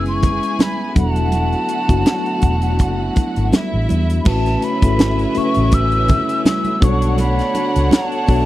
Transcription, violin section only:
0, 0, Header, 1, 2, 480
1, 0, Start_track
1, 0, Key_signature, 3, "major"
1, 0, Tempo, 732601
1, 867, Time_signature, 4, 2, 24, 8
1, 5540, End_track
2, 0, Start_track
2, 0, Title_t, "Violin section"
2, 0, Program_c, 0, 48
2, 0, Note_on_c, 0, 68, 73
2, 0, Note_on_c, 0, 80, 82
2, 611, Note_off_c, 0, 80, 0
2, 612, Note_off_c, 0, 68, 0
2, 625, Note_on_c, 0, 66, 84
2, 626, Note_on_c, 0, 78, 92
2, 2282, Note_off_c, 0, 66, 0
2, 2282, Note_off_c, 0, 78, 0
2, 2311, Note_on_c, 0, 76, 81
2, 2312, Note_on_c, 0, 64, 77
2, 2780, Note_off_c, 0, 76, 0
2, 2781, Note_off_c, 0, 64, 0
2, 2788, Note_on_c, 0, 76, 84
2, 2790, Note_on_c, 0, 61, 78
2, 2791, Note_on_c, 0, 71, 85
2, 4441, Note_off_c, 0, 76, 0
2, 4442, Note_off_c, 0, 61, 0
2, 4443, Note_off_c, 0, 71, 0
2, 4465, Note_on_c, 0, 73, 82
2, 4468, Note_on_c, 0, 78, 92
2, 4469, Note_on_c, 0, 62, 85
2, 5540, Note_off_c, 0, 62, 0
2, 5540, Note_off_c, 0, 73, 0
2, 5540, Note_off_c, 0, 78, 0
2, 5540, End_track
0, 0, End_of_file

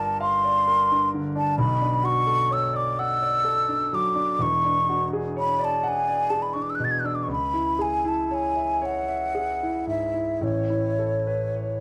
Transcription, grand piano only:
0, 0, Header, 1, 2, 480
1, 0, Start_track
1, 0, Tempo, 925926
1, 819, Time_signature, 6, 3, 24, 8
1, 1298, Tempo, 956938
1, 3698, Tempo, 1025641
1, 4658, Tempo, 1075269
1, 5138, Tempo, 1127820
1, 5729, End_track
2, 0, Start_track
2, 0, Title_t, "Grand piano"
2, 0, Program_c, 0, 0
2, 0, Control_c, 0, 64, 127
2, 0, Note_on_c, 0, 31, 58
2, 0, Note_on_c, 0, 43, 58
2, 0, Note_on_c, 0, 62, 46
2, 0, Note_on_c, 0, 65, 52
2, 0, Note_on_c, 0, 70, 52
2, 0, Note_on_c, 0, 74, 50
2, 56, Note_off_c, 0, 74, 0
2, 106, Note_on_c, 0, 77, 59
2, 179, Note_off_c, 0, 70, 0
2, 229, Note_on_c, 0, 74, 51
2, 296, Note_off_c, 0, 77, 0
2, 350, Note_on_c, 0, 70, 56
2, 418, Note_off_c, 0, 74, 0
2, 475, Note_off_c, 0, 62, 0
2, 475, Note_on_c, 0, 62, 44
2, 538, Note_off_c, 0, 70, 0
2, 592, Note_on_c, 0, 50, 52
2, 660, Note_off_c, 0, 62, 0
2, 702, Note_on_c, 0, 62, 50
2, 777, Note_off_c, 0, 50, 0
2, 804, Note_off_c, 0, 31, 0
2, 806, Note_off_c, 0, 43, 0
2, 819, Note_off_c, 0, 62, 0
2, 819, Note_on_c, 0, 35, 64
2, 825, Note_on_c, 0, 47, 67
2, 826, Control_c, 0, 64, 0
2, 829, Note_off_c, 0, 65, 0
2, 895, Control_c, 0, 64, 127
2, 939, Note_on_c, 0, 62, 50
2, 1053, Note_on_c, 0, 66, 50
2, 1129, Note_off_c, 0, 62, 0
2, 1176, Note_on_c, 0, 69, 54
2, 1248, Note_off_c, 0, 66, 0
2, 1297, Note_on_c, 0, 73, 49
2, 1370, Note_off_c, 0, 69, 0
2, 1414, Note_on_c, 0, 74, 57
2, 1488, Note_off_c, 0, 73, 0
2, 1542, Note_on_c, 0, 78, 59
2, 1606, Note_off_c, 0, 74, 0
2, 1659, Note_on_c, 0, 74, 57
2, 1729, Note_off_c, 0, 78, 0
2, 1770, Note_on_c, 0, 69, 57
2, 1846, Note_off_c, 0, 74, 0
2, 1891, Note_on_c, 0, 62, 48
2, 1961, Note_off_c, 0, 69, 0
2, 2013, Note_on_c, 0, 54, 57
2, 2081, Note_off_c, 0, 62, 0
2, 2125, Note_on_c, 0, 62, 51
2, 2204, Note_off_c, 0, 54, 0
2, 2231, Note_off_c, 0, 35, 0
2, 2233, Note_off_c, 0, 47, 0
2, 2244, Note_on_c, 0, 28, 61
2, 2248, Note_off_c, 0, 62, 0
2, 2252, Note_on_c, 0, 40, 55
2, 2259, Control_c, 0, 64, 0
2, 2347, Control_c, 0, 64, 127
2, 2372, Note_on_c, 0, 62, 46
2, 2495, Note_on_c, 0, 66, 52
2, 2566, Note_off_c, 0, 62, 0
2, 2617, Note_on_c, 0, 68, 51
2, 2687, Note_off_c, 0, 66, 0
2, 2733, Note_on_c, 0, 73, 51
2, 2807, Note_off_c, 0, 68, 0
2, 2846, Note_on_c, 0, 74, 61
2, 2924, Note_off_c, 0, 73, 0
2, 2968, Note_on_c, 0, 78, 62
2, 3040, Note_off_c, 0, 74, 0
2, 3092, Note_on_c, 0, 74, 51
2, 3161, Note_off_c, 0, 78, 0
2, 3203, Note_on_c, 0, 68, 50
2, 3283, Note_off_c, 0, 74, 0
2, 3330, Note_on_c, 0, 62, 48
2, 3400, Note_off_c, 0, 68, 0
2, 3451, Note_on_c, 0, 47, 56
2, 3525, Note_off_c, 0, 62, 0
2, 3574, Note_on_c, 0, 62, 52
2, 3648, Note_off_c, 0, 47, 0
2, 3675, Note_off_c, 0, 28, 0
2, 3679, Note_off_c, 0, 40, 0
2, 3693, Note_on_c, 0, 37, 55
2, 3699, Note_off_c, 0, 62, 0
2, 3707, Control_c, 0, 64, 0
2, 3801, Control_c, 0, 64, 127
2, 3814, Note_on_c, 0, 64, 45
2, 3932, Note_on_c, 0, 68, 50
2, 4006, Note_off_c, 0, 64, 0
2, 4054, Note_on_c, 0, 64, 49
2, 4126, Note_off_c, 0, 68, 0
2, 4175, Note_on_c, 0, 73, 44
2, 4247, Note_off_c, 0, 64, 0
2, 4293, Note_on_c, 0, 76, 49
2, 4368, Note_off_c, 0, 73, 0
2, 4414, Note_on_c, 0, 73, 53
2, 4487, Note_off_c, 0, 76, 0
2, 4539, Note_on_c, 0, 76, 45
2, 4609, Note_off_c, 0, 73, 0
2, 4661, Note_on_c, 0, 68, 47
2, 4730, Note_off_c, 0, 76, 0
2, 4787, Note_on_c, 0, 64, 37
2, 4849, Note_off_c, 0, 68, 0
2, 4895, Note_on_c, 0, 44, 42
2, 4973, Note_off_c, 0, 64, 0
2, 5016, Note_on_c, 0, 64, 38
2, 5089, Note_off_c, 0, 44, 0
2, 5119, Note_off_c, 0, 37, 0
2, 5136, Note_on_c, 0, 33, 49
2, 5139, Note_off_c, 0, 64, 0
2, 5139, Note_on_c, 0, 45, 49
2, 5147, Control_c, 0, 64, 0
2, 5222, Control_c, 0, 64, 127
2, 5259, Note_on_c, 0, 64, 39
2, 5382, Note_on_c, 0, 69, 40
2, 5450, Note_off_c, 0, 64, 0
2, 5502, Note_on_c, 0, 71, 42
2, 5573, Note_off_c, 0, 69, 0
2, 5626, Note_on_c, 0, 73, 38
2, 5693, Note_off_c, 0, 71, 0
2, 5729, Note_off_c, 0, 33, 0
2, 5729, Note_off_c, 0, 45, 0
2, 5729, Note_off_c, 0, 73, 0
2, 5729, End_track
0, 0, End_of_file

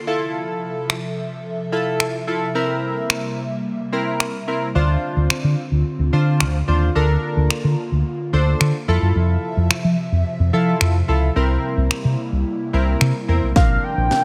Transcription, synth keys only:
0, 0, Header, 1, 2, 480
1, 0, Start_track
1, 0, Key_signature, -1, "major"
1, 0, Tempo, 550459
1, 304, Time_signature, 4, 2, 24, 8
1, 12418, End_track
2, 0, Start_track
2, 0, Title_t, "Synth keys"
2, 0, Program_c, 0, 88
2, 0, Note_on_c, 0, 84, 73
2, 63, Note_on_c, 0, 64, 86
2, 65, Note_on_c, 0, 65, 75
2, 67, Note_on_c, 0, 69, 90
2, 271, Note_off_c, 0, 84, 0
2, 832, Note_off_c, 0, 64, 0
2, 833, Note_off_c, 0, 65, 0
2, 834, Note_off_c, 0, 69, 0
2, 1502, Note_on_c, 0, 64, 78
2, 1504, Note_on_c, 0, 65, 72
2, 1506, Note_on_c, 0, 69, 91
2, 1874, Note_off_c, 0, 64, 0
2, 1876, Note_off_c, 0, 65, 0
2, 1877, Note_off_c, 0, 69, 0
2, 1982, Note_on_c, 0, 64, 74
2, 1984, Note_on_c, 0, 65, 67
2, 1987, Note_on_c, 0, 69, 82
2, 2169, Note_off_c, 0, 64, 0
2, 2170, Note_off_c, 0, 65, 0
2, 2171, Note_off_c, 0, 69, 0
2, 2222, Note_on_c, 0, 60, 86
2, 2225, Note_on_c, 0, 64, 80
2, 2227, Note_on_c, 0, 70, 91
2, 2966, Note_off_c, 0, 60, 0
2, 2967, Note_off_c, 0, 64, 0
2, 2968, Note_off_c, 0, 70, 0
2, 3422, Note_on_c, 0, 60, 78
2, 3424, Note_on_c, 0, 64, 72
2, 3426, Note_on_c, 0, 70, 87
2, 3794, Note_off_c, 0, 60, 0
2, 3796, Note_off_c, 0, 64, 0
2, 3797, Note_off_c, 0, 70, 0
2, 3902, Note_on_c, 0, 60, 72
2, 3904, Note_on_c, 0, 64, 67
2, 3907, Note_on_c, 0, 70, 77
2, 4089, Note_off_c, 0, 60, 0
2, 4090, Note_off_c, 0, 64, 0
2, 4091, Note_off_c, 0, 70, 0
2, 4142, Note_on_c, 0, 62, 80
2, 4144, Note_on_c, 0, 65, 74
2, 4146, Note_on_c, 0, 72, 91
2, 4886, Note_off_c, 0, 62, 0
2, 4887, Note_off_c, 0, 65, 0
2, 4888, Note_off_c, 0, 72, 0
2, 5343, Note_on_c, 0, 62, 78
2, 5345, Note_on_c, 0, 65, 72
2, 5347, Note_on_c, 0, 72, 87
2, 5715, Note_off_c, 0, 62, 0
2, 5716, Note_off_c, 0, 65, 0
2, 5717, Note_off_c, 0, 72, 0
2, 5822, Note_on_c, 0, 62, 72
2, 5824, Note_on_c, 0, 65, 66
2, 5826, Note_on_c, 0, 72, 81
2, 6009, Note_off_c, 0, 62, 0
2, 6010, Note_off_c, 0, 65, 0
2, 6011, Note_off_c, 0, 72, 0
2, 6062, Note_on_c, 0, 62, 81
2, 6065, Note_on_c, 0, 69, 76
2, 6067, Note_on_c, 0, 70, 93
2, 6806, Note_off_c, 0, 62, 0
2, 6807, Note_off_c, 0, 69, 0
2, 6808, Note_off_c, 0, 70, 0
2, 7263, Note_on_c, 0, 62, 78
2, 7266, Note_on_c, 0, 69, 74
2, 7268, Note_on_c, 0, 72, 91
2, 7635, Note_off_c, 0, 62, 0
2, 7636, Note_off_c, 0, 69, 0
2, 7637, Note_off_c, 0, 72, 0
2, 7745, Note_on_c, 0, 64, 86
2, 7747, Note_on_c, 0, 65, 75
2, 7749, Note_on_c, 0, 69, 97
2, 8513, Note_off_c, 0, 64, 0
2, 8514, Note_off_c, 0, 65, 0
2, 8515, Note_off_c, 0, 69, 0
2, 9183, Note_on_c, 0, 64, 83
2, 9185, Note_on_c, 0, 65, 73
2, 9187, Note_on_c, 0, 69, 88
2, 9555, Note_off_c, 0, 64, 0
2, 9556, Note_off_c, 0, 65, 0
2, 9557, Note_off_c, 0, 69, 0
2, 9663, Note_on_c, 0, 64, 77
2, 9666, Note_on_c, 0, 65, 65
2, 9668, Note_on_c, 0, 69, 82
2, 9850, Note_off_c, 0, 64, 0
2, 9851, Note_off_c, 0, 65, 0
2, 9852, Note_off_c, 0, 69, 0
2, 9904, Note_on_c, 0, 60, 85
2, 9906, Note_on_c, 0, 64, 79
2, 9909, Note_on_c, 0, 70, 90
2, 10647, Note_off_c, 0, 60, 0
2, 10648, Note_off_c, 0, 64, 0
2, 10649, Note_off_c, 0, 70, 0
2, 11103, Note_on_c, 0, 60, 79
2, 11105, Note_on_c, 0, 64, 71
2, 11107, Note_on_c, 0, 70, 86
2, 11475, Note_off_c, 0, 60, 0
2, 11476, Note_off_c, 0, 64, 0
2, 11477, Note_off_c, 0, 70, 0
2, 11583, Note_on_c, 0, 60, 73
2, 11585, Note_on_c, 0, 64, 67
2, 11587, Note_on_c, 0, 70, 79
2, 11769, Note_off_c, 0, 60, 0
2, 11770, Note_off_c, 0, 64, 0
2, 11772, Note_off_c, 0, 70, 0
2, 11822, Note_on_c, 0, 60, 73
2, 11824, Note_on_c, 0, 62, 66
2, 11827, Note_on_c, 0, 70, 81
2, 12418, Note_off_c, 0, 60, 0
2, 12418, Note_off_c, 0, 62, 0
2, 12418, Note_off_c, 0, 70, 0
2, 12418, End_track
0, 0, End_of_file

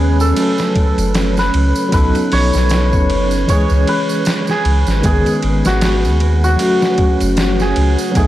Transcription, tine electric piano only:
0, 0, Header, 1, 2, 480
1, 0, Start_track
1, 0, Tempo, 779221
1, 1183, Time_signature, 4, 2, 24, 8
1, 5095, End_track
2, 0, Start_track
2, 0, Title_t, "Tine electric piano"
2, 0, Program_c, 0, 4
2, 0, Control_c, 0, 64, 127
2, 0, Note_on_c, 0, 51, 75
2, 0, Note_on_c, 0, 56, 71
2, 0, Note_on_c, 0, 59, 70
2, 0, Note_on_c, 0, 68, 86
2, 172, Note_off_c, 0, 51, 0
2, 179, Note_off_c, 0, 56, 0
2, 186, Note_off_c, 0, 59, 0
2, 192, Note_off_c, 0, 68, 0
2, 205, Note_on_c, 0, 54, 83
2, 218, Note_on_c, 0, 57, 70
2, 232, Control_c, 0, 64, 0
2, 233, Note_on_c, 0, 61, 69
2, 248, Note_on_c, 0, 69, 89
2, 346, Control_c, 0, 64, 127
2, 1133, Note_off_c, 0, 54, 0
2, 1140, Note_off_c, 0, 57, 0
2, 1147, Note_off_c, 0, 61, 0
2, 1155, Note_off_c, 0, 69, 0
2, 1163, Note_on_c, 0, 54, 70
2, 1178, Note_on_c, 0, 59, 70
2, 1190, Note_on_c, 0, 63, 70
2, 1192, Control_c, 0, 64, 0
2, 1206, Note_on_c, 0, 69, 84
2, 1315, Control_c, 0, 64, 127
2, 2092, Note_off_c, 0, 54, 0
2, 2100, Note_off_c, 0, 59, 0
2, 2106, Note_off_c, 0, 63, 0
2, 2114, Note_off_c, 0, 69, 0
2, 2127, Note_on_c, 0, 52, 75
2, 2139, Note_on_c, 0, 56, 67
2, 2152, Control_c, 0, 64, 0
2, 2153, Note_on_c, 0, 61, 67
2, 2169, Note_on_c, 0, 68, 89
2, 2259, Control_c, 0, 64, 127
2, 3054, Note_off_c, 0, 52, 0
2, 3060, Note_off_c, 0, 56, 0
2, 3067, Note_off_c, 0, 61, 0
2, 3075, Note_off_c, 0, 68, 0
2, 3086, Note_on_c, 0, 51, 73
2, 3100, Note_on_c, 0, 56, 65
2, 3112, Control_c, 0, 64, 0
2, 3114, Note_on_c, 0, 59, 70
2, 3125, Note_on_c, 0, 68, 82
2, 3209, Control_c, 0, 64, 127
2, 4014, Note_off_c, 0, 51, 0
2, 4021, Note_off_c, 0, 56, 0
2, 4028, Note_off_c, 0, 59, 0
2, 4033, Note_off_c, 0, 68, 0
2, 4039, Note_on_c, 0, 54, 77
2, 4053, Note_on_c, 0, 57, 74
2, 4068, Note_on_c, 0, 61, 71
2, 4071, Control_c, 0, 64, 0
2, 4080, Note_on_c, 0, 66, 85
2, 4192, Control_c, 0, 64, 127
2, 4970, Note_off_c, 0, 54, 0
2, 4977, Note_off_c, 0, 57, 0
2, 4985, Note_off_c, 0, 61, 0
2, 4991, Note_off_c, 0, 66, 0
2, 4999, Note_on_c, 0, 54, 74
2, 5013, Note_on_c, 0, 59, 69
2, 5026, Note_on_c, 0, 63, 71
2, 5031, Control_c, 0, 64, 0
2, 5041, Note_on_c, 0, 57, 82
2, 5095, Note_off_c, 0, 54, 0
2, 5095, Note_off_c, 0, 57, 0
2, 5095, Note_off_c, 0, 59, 0
2, 5095, Note_off_c, 0, 63, 0
2, 5095, End_track
0, 0, End_of_file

